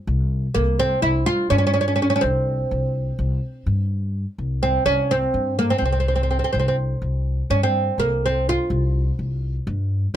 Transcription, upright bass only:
0.07 0.45 C2 medium
0.56 0.94 C2 medium
1.02 1.22 C2 medium
1.51 2.08 G2 medium
2.23 2.61 C2 medium
2.71 3.09 C2 medium
3.19 3.38 C2 medium
3.66 4.24 G2 medium
4.38 4.77 C2 medium
4.85 5.24 C2 medium
5.34 5.72 G2 medium
5.82 6.40 C2 medium
6.54 6.93 C2 medium
7.02 7.40 C2 medium
7.50 7.89 G2 loud
7.98 8.56 C2 medium
8.70 9.09 C2 medium
9.19 9.57 C2 medium
9.67 10.05 G2 loud

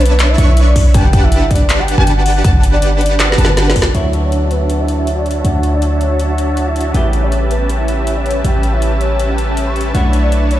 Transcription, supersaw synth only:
0.00 0.36 D4 medium
0.00 0.36 B4 medium
0.00 0.36 C#5 medium
0.00 0.36 E5 medium
0.00 0.36 A5 loud
0.38 0.92 D4 medium
0.38 0.92 B4 medium
0.38 0.92 C#5 medium
0.38 0.92 E5 medium
0.38 0.92 C#6 loud
0.94 1.96 D4 medium
0.94 1.96 G4 medium
0.94 1.96 B4 medium
0.94 1.96 F#5 medium
0.94 1.96 A5 medium
1.98 2.42 D4 medium
1.98 2.42 G4 medium
1.98 2.42 B4 medium
1.98 2.42 F#5 medium
2.44 3.36 D4 loud
2.44 3.36 G4 medium
3.38 3.92 D4 medium
3.38 3.92 G4 medium
3.38 3.92 B4 medium
3.38 3.92 F#5 medium
3.38 3.92 A5 loud
3.94 6.92 D4 medium
3.94 6.92 F#4 medium
3.94 6.92 C#5 medium
3.94 6.92 E5 medium
3.94 6.92 A5 medium
6.94 9.92 C#4 medium
6.94 9.92 G4 medium
6.94 9.92 B4 medium
6.94 9.92 E5 medium
6.94 9.92 A5 medium
9.95 10.60 D4 medium
9.95 10.60 B4 medium
9.95 10.60 C#5 medium
9.95 10.60 E5 medium
9.95 10.60 A5 medium

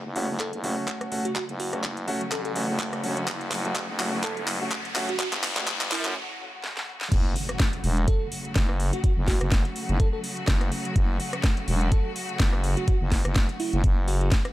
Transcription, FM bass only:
0.05 0.27 F#1 medium
0.29 0.51 F#1 medium
0.53 0.75 F#1 medium
1.49 1.82 F#1 loud
1.84 2.06 F#1 loud
2.32 2.67 A1 medium
2.69 3.02 F#1 loud
3.04 3.26 E1 medium
3.28 3.50 F#1 loud
3.52 3.87 F#1 loud
3.89 4.11 F#1 loud
4.13 4.35 F#1 loud
4.37 4.59 F#1 medium
5.33 5.66 F#1 loud
5.68 5.90 F#1 loud
5.92 6.14 F#2 loud
7.12 7.34 F#1 medium
7.84 8.06 E1 loud
8.56 8.91 F#1 medium
9.17 9.39 F#1 loud
9.41 9.63 F#1 loud
9.89 9.98 F#1 loud
10.48 10.70 F#1 medium
10.96 11.18 F#1 loud
11.68 11.90 E1 loud
12.40 12.75 F#1 medium
13.01 13.23 F#1 loud
13.25 13.47 F#1 loud
13.73 13.82 F#1 medium
13.84 14.30 F#1 medium

